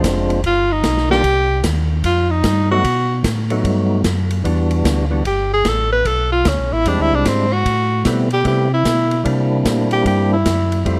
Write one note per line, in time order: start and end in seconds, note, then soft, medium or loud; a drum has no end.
0.00 0.43 F1 medium
0.00 0.41 F3 medium
0.00 0.41 G#3 medium
0.00 0.42 C4 medium
0.00 0.42 D4 medium
0.00 0.42 F4 medium
0.00 kick soft
0.00 hi-hat pedal medium
0.00 ride medium
0.04 snare medium
0.30 ride soft
0.44 0.83 G1 medium
0.44 0.73 F4 medium
0.44 kick soft
0.44 ride medium
0.72 1.10 D#4 medium
0.83 1.23 B1 medium
0.83 kick soft
0.83 snare medium
0.83 hi-hat pedal soft
0.83 ride medium
0.97 snare soft
1.10 1.23 D#3 medium
1.10 1.23 G3 medium
1.10 1.23 A#3 medium
1.10 1.23 D4 medium
1.10 1.24 F4 medium
1.10 1.61 G4 loud
1.10 snare soft
1.24 1.63 C2 medium
1.24 kick soft
1.24 ride medium
1.64 2.03 D#2 medium
1.64 kick soft
1.64 snare medium
1.64 hi-hat pedal medium
1.64 ride medium
2.04 2.43 F2 medium
2.04 2.32 F4 medium
2.04 kick soft
2.04 ride medium
2.30 2.70 D#4 medium
2.44 2.83 G2 medium
2.44 kick soft
2.44 snare medium
2.44 hi-hat pedal medium
2.44 ride medium
2.71 2.83 F#3 medium
2.71 2.83 A3 medium
2.71 2.84 B3 medium
2.71 2.84 D#4 medium
2.71 3.21 F#4 medium
2.71 2.84 F#4 medium
2.84 3.23 B2 medium
2.84 kick soft
2.84 ride medium
3.24 3.63 A2 medium
3.24 kick soft
3.24 snare medium
3.24 hi-hat pedal medium
3.24 ride medium
3.50 4.02 F#3 medium
3.50 4.02 A3 medium
3.50 4.02 B3 medium
3.50 4.02 D#4 medium
3.50 4.02 F#4 medium
3.50 ride soft
3.64 4.03 G2 medium
3.64 kick soft
3.64 ride medium
4.04 4.43 F#2 medium
4.04 kick soft
4.04 snare medium
4.04 hi-hat pedal medium
4.04 ride medium
4.31 ride soft
4.44 4.83 E2 medium
4.44 5.05 E3 medium
4.44 5.05 G3 medium
4.44 5.05 B3 medium
4.44 5.05 D4 medium
4.44 5.06 F#4 medium
4.44 kick soft
4.44 ride medium
4.71 ride soft
4.84 5.23 D2 medium
4.84 kick soft
4.84 snare medium
4.84 hi-hat pedal medium
4.84 ride medium
5.10 5.23 E3 medium
5.10 5.24 G3 medium
5.10 5.24 B3 medium
5.10 5.24 D4 medium
5.10 5.24 F#4 medium
5.25 5.64 G1 medium
5.25 5.50 G4 medium
5.25 kick soft
5.25 ride medium
5.53 5.69 G#4 loud
5.65 6.04 A1 medium
5.65 5.92 A4 medium
5.65 kick soft
5.65 snare medium
5.65 hi-hat pedal medium
5.65 ride medium
5.92 6.08 B4 loud
6.05 6.44 B1 medium
6.05 6.32 A4 medium
6.05 kick soft
6.05 ride medium
6.32 6.49 F4 loud
6.45 6.58 D2 medium
6.45 6.74 C#4 medium
6.45 kick soft
6.45 snare medium
6.45 hi-hat pedal medium
6.45 ride medium
6.59 6.72 B1 medium
6.73 6.85 A1 medium
6.73 6.89 E4 loud
6.85 6.98 E2 medium
6.85 7.46 G3 medium
6.85 7.46 G#3 medium
6.85 7.47 C4 medium
6.85 7.47 D4 medium
6.85 7.03 D4 medium
6.85 7.47 E4 medium
6.85 kick soft
6.85 ride medium
6.99 7.12 D2 medium
6.99 7.16 E4 loud
7.13 7.25 C2 medium
7.13 7.29 D4 medium
7.25 7.64 G#2 medium
7.25 7.54 C4 medium
7.25 kick soft
7.25 snare medium
7.25 hi-hat pedal soft
7.25 ride medium
7.53 8.06 F#4 loud
7.65 8.04 A2 medium
7.65 kick soft
7.65 ride medium
8.05 8.44 B2 medium
8.05 8.29 G3 medium
8.05 8.29 A3 medium
8.05 8.29 B3 medium
8.05 8.29 C4 medium
8.05 8.29 E4 medium
8.05 kick soft
8.05 snare medium
8.05 hi-hat pedal medium
8.05 ride medium
8.30 8.45 G4 loud
8.30 ride soft
8.44 8.84 C3 medium
8.44 8.68 G3 medium
8.44 8.68 A3 medium
8.44 8.68 B3 medium
8.44 8.68 C4 medium
8.44 8.69 E4 medium
8.44 8.70 G4 medium
8.44 kick soft
8.44 ride medium
8.74 9.23 E4 medium
8.85 9.24 B2 medium
8.85 kick soft
8.85 snare medium
8.85 hi-hat pedal medium
8.85 ride medium
9.11 ride soft
9.24 9.64 C3 medium
9.24 10.36 G3 medium
9.24 10.37 A#3 medium
9.24 10.37 C4 medium
9.24 10.37 D4 medium
9.24 10.37 E4 medium
9.24 kick soft
9.24 ride medium
9.65 10.04 A#2 medium
9.65 kick soft
9.65 snare medium
9.65 hi-hat pedal medium
9.65 ride medium
9.91 10.05 G4 loud
9.91 ride soft
10.05 10.44 G2 medium
10.05 10.30 G4 medium
10.05 kick soft
10.05 ride medium
10.33 10.83 E4 medium
10.45 10.84 F#2 medium
10.45 kick soft
10.45 snare medium
10.45 hi-hat pedal medium
10.45 ride medium
10.72 ride soft
10.85 11.00 F2 medium
10.85 11.00 G3 medium
10.85 11.00 A3 medium
10.85 11.00 C4 medium
10.85 11.00 E4 medium
10.85 11.00 F4 medium
10.85 kick soft
10.85 ride medium